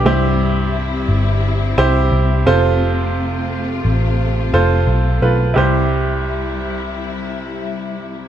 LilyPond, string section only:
\new Staff \with { instrumentName = "String section" } { \time 4/4 \key c \major \tempo 4 = 87 << { <g e'>2.~ <g e'>8 <a f'>8~ | <a f'>1 | <c g e'>1 | } \\ { c'1~ | c'1 | r1 | } >> }